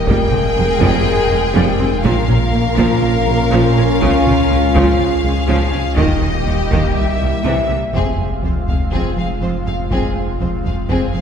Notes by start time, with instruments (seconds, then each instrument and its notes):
Already playing: french horn section A#4, analog synth pad G5
0.07 sub bass F1, double bass section F1, analog synth bass F2, cello section F2, viola section G3, analog synth pad G#3 C4 F5, french horn section G#3, violin section G#4 G5, taiko
0.32 double bass section F1, cello section F2, analog synth bass F2, viola section C4, taiko mid
0.56 double bass section F1, analog synth bass F2, cello section F2, viola section G#3
0.80 double bass section F1, analog synth bass F2, cello section F2, viola section G3, taiko
1.05 analog synth bass F2
1.30 double bass section F1, cello section F2, analog synth bass F2, viola section G#3
1.54 double bass section F1, analog synth bass F2, cello section F2, viola section G3
1.79 double bass section F1, cello section F2, analog synth bass F2, viola section C4
2.03 sub bass A#1, double bass section A#1, cello section A#2, analog synth bass A#2, viola section F3, analog synth pad A#3 C#4 F4, french horn section C#4 F4, violin section A#4 F5, taiko
2.28 double bass section A#1, analog synth bass A#2, cello section A#2, viola section C#4, taiko mid
2.53 double bass section A#1, analog synth bass A#2, cello section A#2, viola section A#3
2.77 double bass section A#1, analog synth bass A#2, cello section A#2, viola section F3, taiko
3.02 analog synth bass A#2
3.27 double bass section A#1, cello section A#2, analog synth bass A#2, viola section A#3
3.51 double bass section A#1, analog synth bass A#2, cello section A#2, viola section F3
3.76 double bass section A#1, cello section A#2, analog synth bass A#2, viola section C#4
4.00 analog synth bass C#2, sub bass C#2, double bass section C#2, cello section C#3, viola section F3, analog synth pad G#3, taiko
4.25 analog synth bass C#2, double bass section C#2, cello section C#3, viola section C#4, taiko mid
4.50 analog synth bass C#2, double bass section C#2, cello section C#3, viola section G#3
4.75 analog synth bass C#2, double bass section C#2, cello section C#3, viola section F3, taiko
4.99 analog synth bass C#2, violin section G#4
5.24 analog synth bass C#2, double bass section C#2, cello section C#3, viola section G#3
5.48 analog synth bass C#2, double bass section C#2, cello section C#3, viola section F3
5.73 analog synth bass C#2, double bass section C#2, cello section C#3, viola section C#4
5.97 sub bass D#1, analog synth bass D#2, double bass section D#2, cello section D#3, viola section D#3, analog synth pad G3 A#3 G4 D#5, french horn section A#3 G4, violin section G4 D#5, taiko
6.21 analog synth bass D#2, double bass section D#2, cello section D#3, viola section A#3, taiko mid
6.46 analog synth bass D#2, double bass section D#2, cello section D#3, viola section G3
6.70 analog synth bass D#2, double bass section D#2, cello section D#3, viola section D#3, taiko
6.95 analog synth bass C2, sub bass C2, french horn section E4, violin section E5, analog synth pad E5
7.19 analog synth bass C2, double bass section C2, cello section C3, viola section G3
7.44 analog synth bass C2, double bass section C2, cello section C3, viola section E3
7.69 analog synth bass C2, double bass section C2, cello section C3, viola section A#3
7.93 sub bass F1, double bass section F1, analog synth bass F2, cello section F2, french horn section G#3 C4, analog synth pad G#3 C4 F4 F5, violin section C4 G#4, viola section C4, taiko
8.18 analog synth bass F2
8.43 double bass section F1, cello section F2, analog synth bass F3, viola section C4, violin section F4 C5, taiko low
8.67 double bass section F1, analog synth bass F2, cello section F2, viola section C4, violin section G#4 F5, taiko low
8.91 double bass section F1, analog synth bass F2, cello section F2, french horn section G#3 C4, viola section C4, violin section C4 G#4, taiko
9.16 double bass section F1, cello section F2, analog synth bass F3, viola section C4, violin section G#4 F5
9.41 double bass section F1, cello section F2, analog synth bass F3, viola section C4, violin section F4 C5
9.66 double bass section F1, cello section F2, analog synth bass F2, viola section C4, violin section G#4 F5
9.90 double bass section F1, analog synth bass F2, cello section F2, french horn section G#3 C4, violin section C4 G#4, viola section C4, taiko
10.15 analog synth bass F2
10.40 double bass section F1, cello section F2, analog synth bass F3, viola section C4, violin section F4 C5, taiko low
10.64 double bass section F1, cello section F2, analog synth bass F2, viola section C4, violin section G#4 F5, taiko low
10.89 double bass section F1, analog synth bass F2, cello section F2, french horn section G#3 C4, viola section C4, violin section C4 G#4, taiko
11.13 double bass section F1, cello section F2, analog synth bass F3, viola section C4, violin section G#4 F5